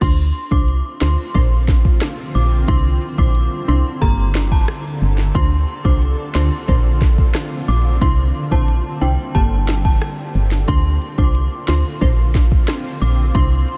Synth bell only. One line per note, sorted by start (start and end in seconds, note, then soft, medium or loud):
0.02 0.14 C6 loud
0.52 0.76 D6 medium
1.02 1.26 C6 medium
2.35 2.47 D6 medium
2.68 2.80 C6 loud
3.18 3.43 D6 medium
3.68 3.93 C6 medium
4.02 4.14 A#5 medium
4.52 4.64 A5 medium
5.35 5.47 C6 loud
5.85 6.09 D6 medium
6.35 6.59 C6 medium
7.68 7.80 D6 medium
8.02 8.14 C6 loud
8.52 8.76 A5 medium
9.01 9.26 G5 medium
9.35 9.47 A5 medium
9.85 9.97 A5 medium
10.68 10.80 C6 loud
11.18 11.43 D6 medium
11.68 11.92 C6 medium
13.02 13.14 D6 medium
13.35 13.47 C6 loud